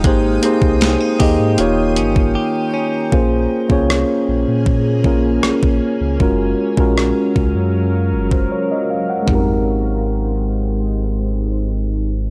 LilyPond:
<<
  \new Staff \with { instrumentName = "Ambient pad" } { \time 4/4 \key aes \major \tempo 4 = 78 << { <aes g'' c'''>2 <bes' des'''>2 | <bes des'>1 | <ges f''>1 | <aes ees' g' c''>1 | } \\ { ees'''1 | aes'1 | bes'1 | r1 | } >> }
  \new Staff \with { instrumentName = "Tine electric piano" } { \time 4/4 \key aes \major << { r1 | r1 | r2 r8. c''16 des''16 ees''16 f''16 ges''16~ | ges''16 r2. r8. | } \\ { <bes ees' g' aes' c''>8 <bes ees' g' aes' c''>8. r16 <bes ees' g' aes' ees''>8 <bes ees' f' g' des''>4. r8 | <bes des' f' aes' c''>8 r16 <bes des' f' aes' des''>4~ <bes des' f' aes' des''>16 r8 <bes des' f' aes' bes'>4~ <bes des' f' aes' bes'>16 r16 | <aes des' f' ges' bes'>8 r16 <aes des' f' ges' bes'>4~ <aes des' f' ges' bes'>16 r2 | <aes c' ees' g' bes'>1 | } >> }
  \new Staff \with { instrumentName = "Clean electric guitar" } { \time 4/4 \key aes \major aes8 c'8 des'16 ees'16 g'8 ees8 des'8 g'8 des'8 | r1 | r1 | r1 | }
  \new Staff \with { instrumentName = "Sub bass" } { \clef bass \time 4/4 \key aes \major aes,,8 r16 c,8 r16 ees,16 aes,16 ees,,8 g,,8 r4 | bes,,8 r16 c,8 r16 bes,,16 bes,8. bes,,8 bes,,16 bes,,16 r16 des,16 | ges,,8 r16 bes,,8 r16 des,16 ges,8. ges,,8 r4 | aes,,1 | }
  \new DrumStaff \with { instrumentName = "Drums" } \drummode { \time 4/4 <hh bd>8 hh16 bd16 <hh sn>8 <hho bd>8 hh8 hh16 bd16 r4 | bd8. bd16 ss4 bd8 bd8 ss16 bd8. | bd8. bd16 ss8 bd8 r8. bd16 r4 | <bd tomfh>4 r4 r4 r4 | }
>>